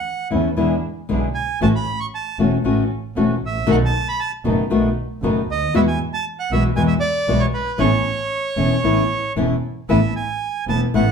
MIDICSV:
0, 0, Header, 1, 5, 480
1, 0, Start_track
1, 0, Key_signature, 3, "major"
1, 0, Tempo, 516351
1, 1504, Time_signature, 4, 2, 24, 8
1, 7737, Tempo, 523560
1, 10299, End_track
2, 0, Start_track
2, 0, Title_t, "Bandoneon"
2, 0, Program_c, 0, 23
2, 0, Note_on_c, 0, 78, 78
2, 262, Note_off_c, 0, 78, 0
2, 1251, Note_on_c, 0, 80, 61
2, 1481, Note_off_c, 0, 80, 0
2, 1510, Note_on_c, 0, 81, 75
2, 1563, Note_off_c, 0, 81, 0
2, 1633, Note_on_c, 0, 83, 66
2, 1854, Note_off_c, 0, 83, 0
2, 1861, Note_on_c, 0, 85, 77
2, 1916, Note_off_c, 0, 85, 0
2, 1996, Note_on_c, 0, 81, 67
2, 2215, Note_off_c, 0, 81, 0
2, 3217, Note_on_c, 0, 76, 66
2, 3447, Note_on_c, 0, 78, 79
2, 3448, Note_off_c, 0, 76, 0
2, 3496, Note_off_c, 0, 78, 0
2, 3583, Note_on_c, 0, 81, 73
2, 3788, Note_off_c, 0, 81, 0
2, 3798, Note_on_c, 0, 83, 80
2, 3903, Note_off_c, 0, 83, 0
2, 3903, Note_on_c, 0, 81, 73
2, 4011, Note_off_c, 0, 81, 0
2, 5123, Note_on_c, 0, 75, 83
2, 5336, Note_off_c, 0, 75, 0
2, 5350, Note_on_c, 0, 76, 81
2, 5402, Note_off_c, 0, 76, 0
2, 5462, Note_on_c, 0, 80, 76
2, 5570, Note_off_c, 0, 80, 0
2, 5705, Note_on_c, 0, 81, 81
2, 5812, Note_off_c, 0, 81, 0
2, 5945, Note_on_c, 0, 78, 73
2, 6054, Note_off_c, 0, 78, 0
2, 6062, Note_on_c, 0, 76, 75
2, 6169, Note_off_c, 0, 76, 0
2, 6288, Note_on_c, 0, 80, 84
2, 6345, Note_off_c, 0, 80, 0
2, 6393, Note_on_c, 0, 76, 70
2, 6452, Note_off_c, 0, 76, 0
2, 6506, Note_on_c, 0, 74, 85
2, 6874, Note_on_c, 0, 73, 70
2, 6893, Note_off_c, 0, 74, 0
2, 6933, Note_off_c, 0, 73, 0
2, 7007, Note_on_c, 0, 71, 70
2, 7245, Note_on_c, 0, 73, 80
2, 7260, Note_off_c, 0, 71, 0
2, 8657, Note_off_c, 0, 73, 0
2, 9178, Note_on_c, 0, 76, 71
2, 9403, Note_off_c, 0, 76, 0
2, 9423, Note_on_c, 0, 80, 69
2, 9867, Note_off_c, 0, 80, 0
2, 9908, Note_on_c, 0, 81, 68
2, 10014, Note_off_c, 0, 81, 0
2, 10147, Note_on_c, 0, 78, 72
2, 10299, Note_off_c, 0, 78, 0
2, 10299, End_track
3, 0, Start_track
3, 0, Title_t, "String section"
3, 0, Program_c, 1, 48
3, 304, Note_on_c, 1, 61, 44
3, 304, Note_on_c, 1, 64, 38
3, 309, Note_on_c, 1, 69, 46
3, 502, Note_off_c, 1, 61, 0
3, 502, Note_off_c, 1, 64, 0
3, 504, Note_off_c, 1, 69, 0
3, 539, Note_on_c, 1, 62, 40
3, 542, Note_on_c, 1, 64, 41
3, 543, Note_on_c, 1, 68, 45
3, 740, Note_off_c, 1, 62, 0
3, 742, Note_off_c, 1, 64, 0
3, 742, Note_off_c, 1, 68, 0
3, 1027, Note_on_c, 1, 62, 39
3, 1027, Note_on_c, 1, 64, 35
3, 1030, Note_on_c, 1, 68, 44
3, 1227, Note_off_c, 1, 62, 0
3, 1227, Note_off_c, 1, 64, 0
3, 1228, Note_off_c, 1, 68, 0
3, 1507, Note_on_c, 1, 61, 59
3, 1511, Note_on_c, 1, 66, 53
3, 1512, Note_on_c, 1, 69, 66
3, 1709, Note_off_c, 1, 61, 0
3, 1711, Note_off_c, 1, 66, 0
3, 1711, Note_off_c, 1, 69, 0
3, 2220, Note_on_c, 1, 61, 43
3, 2224, Note_on_c, 1, 66, 38
3, 2226, Note_on_c, 1, 69, 44
3, 2425, Note_off_c, 1, 61, 0
3, 2427, Note_off_c, 1, 66, 0
3, 2428, Note_off_c, 1, 69, 0
3, 2460, Note_on_c, 1, 66, 39
3, 2462, Note_on_c, 1, 61, 44
3, 2462, Note_on_c, 1, 69, 49
3, 2665, Note_off_c, 1, 66, 0
3, 2666, Note_off_c, 1, 61, 0
3, 2666, Note_off_c, 1, 69, 0
3, 2937, Note_on_c, 1, 61, 41
3, 2941, Note_on_c, 1, 66, 37
3, 2943, Note_on_c, 1, 69, 46
3, 3143, Note_off_c, 1, 61, 0
3, 3145, Note_off_c, 1, 66, 0
3, 3146, Note_off_c, 1, 69, 0
3, 3413, Note_on_c, 1, 59, 64
3, 3415, Note_on_c, 1, 63, 59
3, 3416, Note_on_c, 1, 69, 76
3, 3620, Note_off_c, 1, 59, 0
3, 3621, Note_off_c, 1, 63, 0
3, 3622, Note_off_c, 1, 69, 0
3, 4138, Note_on_c, 1, 63, 42
3, 4140, Note_on_c, 1, 59, 45
3, 4142, Note_on_c, 1, 69, 49
3, 4342, Note_off_c, 1, 63, 0
3, 4343, Note_off_c, 1, 59, 0
3, 4344, Note_off_c, 1, 69, 0
3, 4375, Note_on_c, 1, 59, 46
3, 4380, Note_on_c, 1, 63, 38
3, 4382, Note_on_c, 1, 69, 44
3, 4581, Note_off_c, 1, 59, 0
3, 4583, Note_off_c, 1, 63, 0
3, 4584, Note_off_c, 1, 69, 0
3, 4856, Note_on_c, 1, 59, 41
3, 4856, Note_on_c, 1, 63, 39
3, 4859, Note_on_c, 1, 69, 46
3, 5061, Note_off_c, 1, 59, 0
3, 5061, Note_off_c, 1, 63, 0
3, 5063, Note_off_c, 1, 69, 0
3, 5336, Note_on_c, 1, 56, 66
3, 5339, Note_on_c, 1, 64, 62
3, 5343, Note_on_c, 1, 66, 72
3, 5540, Note_off_c, 1, 56, 0
3, 5542, Note_off_c, 1, 64, 0
3, 5544, Note_off_c, 1, 66, 0
3, 6062, Note_on_c, 1, 64, 41
3, 6063, Note_on_c, 1, 56, 47
3, 6069, Note_on_c, 1, 66, 53
3, 6262, Note_off_c, 1, 56, 0
3, 6262, Note_off_c, 1, 64, 0
3, 6265, Note_off_c, 1, 66, 0
3, 6295, Note_on_c, 1, 56, 42
3, 6298, Note_on_c, 1, 64, 41
3, 6299, Note_on_c, 1, 66, 49
3, 6497, Note_off_c, 1, 56, 0
3, 6499, Note_off_c, 1, 64, 0
3, 6500, Note_off_c, 1, 66, 0
3, 6775, Note_on_c, 1, 56, 43
3, 6776, Note_on_c, 1, 64, 39
3, 6778, Note_on_c, 1, 66, 49
3, 6978, Note_off_c, 1, 56, 0
3, 6979, Note_off_c, 1, 64, 0
3, 6980, Note_off_c, 1, 66, 0
3, 7246, Note_on_c, 1, 61, 60
3, 7248, Note_on_c, 1, 69, 75
3, 7250, Note_on_c, 1, 59, 65
3, 7454, Note_off_c, 1, 61, 0
3, 7455, Note_off_c, 1, 69, 0
3, 7456, Note_off_c, 1, 59, 0
3, 7967, Note_on_c, 1, 59, 45
3, 7969, Note_on_c, 1, 61, 39
3, 7970, Note_on_c, 1, 69, 49
3, 8173, Note_off_c, 1, 59, 0
3, 8174, Note_off_c, 1, 61, 0
3, 8175, Note_off_c, 1, 69, 0
3, 8205, Note_on_c, 1, 59, 42
3, 8209, Note_on_c, 1, 61, 39
3, 8209, Note_on_c, 1, 69, 46
3, 8413, Note_off_c, 1, 59, 0
3, 8415, Note_off_c, 1, 61, 0
3, 8415, Note_off_c, 1, 69, 0
3, 8691, Note_on_c, 1, 59, 39
3, 8693, Note_on_c, 1, 61, 36
3, 8693, Note_on_c, 1, 69, 45
3, 8899, Note_off_c, 1, 59, 0
3, 8900, Note_off_c, 1, 61, 0
3, 8900, Note_off_c, 1, 69, 0
3, 9178, Note_on_c, 1, 64, 56
3, 9178, Note_on_c, 1, 69, 73
3, 9179, Note_on_c, 1, 59, 63
3, 9381, Note_off_c, 1, 59, 0
3, 9381, Note_off_c, 1, 64, 0
3, 9381, Note_off_c, 1, 69, 0
3, 9895, Note_on_c, 1, 59, 45
3, 9895, Note_on_c, 1, 64, 39
3, 9898, Note_on_c, 1, 69, 47
3, 10098, Note_off_c, 1, 59, 0
3, 10098, Note_off_c, 1, 64, 0
3, 10100, Note_off_c, 1, 69, 0
3, 10131, Note_on_c, 1, 59, 64
3, 10132, Note_on_c, 1, 64, 63
3, 10135, Note_on_c, 1, 69, 68
3, 10299, Note_off_c, 1, 59, 0
3, 10299, Note_off_c, 1, 64, 0
3, 10299, Note_off_c, 1, 69, 0
3, 10299, End_track
4, 0, Start_track
4, 0, Title_t, "Nylon-string guitar"
4, 0, Program_c, 2, 24
4, 282, Note_on_c, 2, 57, 50
4, 284, Note_on_c, 2, 52, 52
4, 291, Note_on_c, 2, 61, 54
4, 295, Note_on_c, 2, 64, 57
4, 447, Note_off_c, 2, 57, 0
4, 448, Note_off_c, 2, 52, 0
4, 452, Note_off_c, 2, 61, 0
4, 454, Note_off_c, 2, 64, 0
4, 524, Note_on_c, 2, 47, 52
4, 528, Note_on_c, 2, 50, 57
4, 533, Note_on_c, 2, 64, 59
4, 534, Note_on_c, 2, 59, 63
4, 537, Note_on_c, 2, 56, 55
4, 689, Note_off_c, 2, 47, 0
4, 691, Note_off_c, 2, 50, 0
4, 693, Note_off_c, 2, 64, 0
4, 694, Note_off_c, 2, 59, 0
4, 695, Note_off_c, 2, 56, 0
4, 1011, Note_on_c, 2, 47, 51
4, 1012, Note_on_c, 2, 50, 54
4, 1014, Note_on_c, 2, 56, 58
4, 1017, Note_on_c, 2, 64, 59
4, 1020, Note_on_c, 2, 59, 57
4, 1174, Note_off_c, 2, 47, 0
4, 1175, Note_off_c, 2, 50, 0
4, 1176, Note_off_c, 2, 56, 0
4, 1177, Note_off_c, 2, 64, 0
4, 1179, Note_off_c, 2, 59, 0
4, 1500, Note_on_c, 2, 52, 70
4, 1503, Note_on_c, 2, 57, 82
4, 1508, Note_on_c, 2, 61, 75
4, 1510, Note_on_c, 2, 66, 83
4, 1586, Note_off_c, 2, 52, 0
4, 1587, Note_off_c, 2, 57, 0
4, 1590, Note_off_c, 2, 61, 0
4, 1591, Note_off_c, 2, 66, 0
4, 2219, Note_on_c, 2, 52, 49
4, 2222, Note_on_c, 2, 57, 58
4, 2231, Note_on_c, 2, 61, 56
4, 2231, Note_on_c, 2, 66, 60
4, 2381, Note_off_c, 2, 52, 0
4, 2382, Note_off_c, 2, 57, 0
4, 2387, Note_off_c, 2, 61, 0
4, 2387, Note_off_c, 2, 66, 0
4, 2456, Note_on_c, 2, 52, 57
4, 2457, Note_on_c, 2, 57, 63
4, 2464, Note_on_c, 2, 61, 62
4, 2469, Note_on_c, 2, 66, 60
4, 2620, Note_off_c, 2, 52, 0
4, 2620, Note_off_c, 2, 57, 0
4, 2623, Note_off_c, 2, 61, 0
4, 2626, Note_off_c, 2, 66, 0
4, 2940, Note_on_c, 2, 52, 56
4, 2944, Note_on_c, 2, 57, 64
4, 2947, Note_on_c, 2, 61, 62
4, 2951, Note_on_c, 2, 66, 61
4, 3101, Note_off_c, 2, 52, 0
4, 3103, Note_off_c, 2, 57, 0
4, 3104, Note_off_c, 2, 61, 0
4, 3106, Note_off_c, 2, 66, 0
4, 3407, Note_on_c, 2, 57, 87
4, 3409, Note_on_c, 2, 47, 72
4, 3410, Note_on_c, 2, 51, 77
4, 3412, Note_on_c, 2, 59, 73
4, 3417, Note_on_c, 2, 66, 78
4, 3500, Note_off_c, 2, 57, 0
4, 3501, Note_off_c, 2, 47, 0
4, 3501, Note_off_c, 2, 51, 0
4, 3502, Note_off_c, 2, 59, 0
4, 3504, Note_off_c, 2, 66, 0
4, 4133, Note_on_c, 2, 47, 56
4, 4135, Note_on_c, 2, 51, 57
4, 4136, Note_on_c, 2, 57, 55
4, 4137, Note_on_c, 2, 59, 56
4, 4138, Note_on_c, 2, 66, 57
4, 4296, Note_off_c, 2, 47, 0
4, 4297, Note_off_c, 2, 51, 0
4, 4297, Note_off_c, 2, 57, 0
4, 4298, Note_off_c, 2, 59, 0
4, 4299, Note_off_c, 2, 66, 0
4, 4371, Note_on_c, 2, 47, 60
4, 4375, Note_on_c, 2, 51, 58
4, 4377, Note_on_c, 2, 57, 63
4, 4377, Note_on_c, 2, 59, 60
4, 4380, Note_on_c, 2, 66, 68
4, 4535, Note_off_c, 2, 47, 0
4, 4537, Note_off_c, 2, 51, 0
4, 4538, Note_off_c, 2, 57, 0
4, 4538, Note_off_c, 2, 59, 0
4, 4540, Note_off_c, 2, 66, 0
4, 4859, Note_on_c, 2, 47, 55
4, 4866, Note_on_c, 2, 51, 55
4, 4868, Note_on_c, 2, 59, 60
4, 4870, Note_on_c, 2, 57, 63
4, 4872, Note_on_c, 2, 66, 65
4, 5018, Note_off_c, 2, 47, 0
4, 5022, Note_off_c, 2, 51, 0
4, 5023, Note_off_c, 2, 59, 0
4, 5024, Note_off_c, 2, 57, 0
4, 5025, Note_off_c, 2, 66, 0
4, 5336, Note_on_c, 2, 47, 74
4, 5340, Note_on_c, 2, 52, 78
4, 5343, Note_on_c, 2, 59, 81
4, 5343, Note_on_c, 2, 66, 87
4, 5345, Note_on_c, 2, 56, 77
4, 5422, Note_off_c, 2, 47, 0
4, 5424, Note_off_c, 2, 52, 0
4, 5426, Note_off_c, 2, 59, 0
4, 5426, Note_off_c, 2, 66, 0
4, 5427, Note_off_c, 2, 56, 0
4, 6061, Note_on_c, 2, 47, 54
4, 6063, Note_on_c, 2, 52, 50
4, 6067, Note_on_c, 2, 66, 65
4, 6069, Note_on_c, 2, 59, 58
4, 6070, Note_on_c, 2, 56, 61
4, 6217, Note_off_c, 2, 47, 0
4, 6219, Note_off_c, 2, 52, 0
4, 6221, Note_off_c, 2, 66, 0
4, 6222, Note_off_c, 2, 56, 0
4, 6222, Note_off_c, 2, 59, 0
4, 6283, Note_on_c, 2, 47, 57
4, 6289, Note_on_c, 2, 52, 66
4, 6290, Note_on_c, 2, 56, 63
4, 6291, Note_on_c, 2, 66, 66
4, 6295, Note_on_c, 2, 59, 62
4, 6448, Note_off_c, 2, 47, 0
4, 6451, Note_off_c, 2, 52, 0
4, 6451, Note_off_c, 2, 56, 0
4, 6452, Note_off_c, 2, 66, 0
4, 6454, Note_off_c, 2, 59, 0
4, 6768, Note_on_c, 2, 47, 57
4, 6770, Note_on_c, 2, 52, 56
4, 6772, Note_on_c, 2, 56, 62
4, 6776, Note_on_c, 2, 59, 63
4, 6777, Note_on_c, 2, 66, 64
4, 6931, Note_off_c, 2, 47, 0
4, 6932, Note_off_c, 2, 52, 0
4, 6933, Note_off_c, 2, 56, 0
4, 6935, Note_off_c, 2, 59, 0
4, 6935, Note_off_c, 2, 66, 0
4, 7232, Note_on_c, 2, 59, 70
4, 7235, Note_on_c, 2, 52, 73
4, 7242, Note_on_c, 2, 64, 77
4, 7243, Note_on_c, 2, 61, 76
4, 7329, Note_off_c, 2, 59, 0
4, 7330, Note_off_c, 2, 52, 0
4, 7334, Note_off_c, 2, 61, 0
4, 7334, Note_off_c, 2, 64, 0
4, 7958, Note_on_c, 2, 52, 51
4, 7963, Note_on_c, 2, 59, 52
4, 7967, Note_on_c, 2, 61, 64
4, 7968, Note_on_c, 2, 64, 62
4, 8125, Note_off_c, 2, 52, 0
4, 8127, Note_off_c, 2, 59, 0
4, 8129, Note_off_c, 2, 61, 0
4, 8130, Note_off_c, 2, 64, 0
4, 8206, Note_on_c, 2, 59, 57
4, 8208, Note_on_c, 2, 52, 60
4, 8214, Note_on_c, 2, 61, 63
4, 8215, Note_on_c, 2, 64, 56
4, 8370, Note_off_c, 2, 59, 0
4, 8371, Note_off_c, 2, 52, 0
4, 8374, Note_off_c, 2, 61, 0
4, 8374, Note_off_c, 2, 64, 0
4, 8692, Note_on_c, 2, 52, 62
4, 8694, Note_on_c, 2, 59, 59
4, 8699, Note_on_c, 2, 61, 56
4, 8700, Note_on_c, 2, 64, 67
4, 8855, Note_off_c, 2, 52, 0
4, 8857, Note_off_c, 2, 59, 0
4, 8859, Note_off_c, 2, 61, 0
4, 8860, Note_off_c, 2, 64, 0
4, 9174, Note_on_c, 2, 52, 74
4, 9178, Note_on_c, 2, 57, 68
4, 9180, Note_on_c, 2, 59, 82
4, 9185, Note_on_c, 2, 64, 78
4, 9261, Note_off_c, 2, 52, 0
4, 9263, Note_off_c, 2, 57, 0
4, 9264, Note_off_c, 2, 59, 0
4, 9267, Note_off_c, 2, 64, 0
4, 9900, Note_on_c, 2, 52, 52
4, 9905, Note_on_c, 2, 57, 47
4, 9907, Note_on_c, 2, 59, 58
4, 9907, Note_on_c, 2, 64, 54
4, 10057, Note_off_c, 2, 52, 0
4, 10060, Note_off_c, 2, 57, 0
4, 10061, Note_off_c, 2, 59, 0
4, 10061, Note_off_c, 2, 64, 0
4, 10138, Note_on_c, 2, 52, 68
4, 10138, Note_on_c, 2, 57, 77
4, 10146, Note_on_c, 2, 64, 68
4, 10147, Note_on_c, 2, 59, 72
4, 10221, Note_off_c, 2, 52, 0
4, 10221, Note_off_c, 2, 57, 0
4, 10226, Note_off_c, 2, 59, 0
4, 10226, Note_off_c, 2, 64, 0
4, 10299, End_track
5, 0, Start_track
5, 0, Title_t, "Double bass"
5, 0, Program_c, 3, 43
5, 304, Note_on_c, 3, 40, 58
5, 502, Note_off_c, 3, 40, 0
5, 538, Note_on_c, 3, 40, 48
5, 740, Note_off_c, 3, 40, 0
5, 1022, Note_on_c, 3, 35, 51
5, 1224, Note_off_c, 3, 35, 0
5, 1501, Note_on_c, 3, 33, 73
5, 1706, Note_off_c, 3, 33, 0
5, 2223, Note_on_c, 3, 28, 55
5, 2427, Note_off_c, 3, 28, 0
5, 2458, Note_on_c, 3, 33, 49
5, 2664, Note_off_c, 3, 33, 0
5, 2939, Note_on_c, 3, 28, 51
5, 3144, Note_off_c, 3, 28, 0
5, 3179, Note_on_c, 3, 33, 49
5, 3414, Note_off_c, 3, 33, 0
5, 3419, Note_on_c, 3, 35, 76
5, 3623, Note_off_c, 3, 35, 0
5, 4137, Note_on_c, 3, 30, 55
5, 4342, Note_off_c, 3, 30, 0
5, 4378, Note_on_c, 3, 35, 46
5, 4582, Note_off_c, 3, 35, 0
5, 4853, Note_on_c, 3, 30, 56
5, 5059, Note_off_c, 3, 30, 0
5, 5096, Note_on_c, 3, 38, 47
5, 5331, Note_off_c, 3, 38, 0
5, 5336, Note_on_c, 3, 40, 77
5, 5540, Note_off_c, 3, 40, 0
5, 6050, Note_on_c, 3, 35, 59
5, 6256, Note_off_c, 3, 35, 0
5, 6297, Note_on_c, 3, 40, 50
5, 6499, Note_off_c, 3, 40, 0
5, 6769, Note_on_c, 3, 35, 57
5, 6975, Note_off_c, 3, 35, 0
5, 7247, Note_on_c, 3, 33, 79
5, 7454, Note_off_c, 3, 33, 0
5, 7967, Note_on_c, 3, 28, 55
5, 8173, Note_off_c, 3, 28, 0
5, 8206, Note_on_c, 3, 33, 47
5, 8414, Note_off_c, 3, 33, 0
5, 8696, Note_on_c, 3, 28, 55
5, 8902, Note_off_c, 3, 28, 0
5, 9182, Note_on_c, 3, 33, 72
5, 9383, Note_off_c, 3, 33, 0
5, 9892, Note_on_c, 3, 28, 59
5, 10097, Note_off_c, 3, 28, 0
5, 10133, Note_on_c, 3, 33, 71
5, 10299, Note_off_c, 3, 33, 0
5, 10299, End_track
0, 0, End_of_file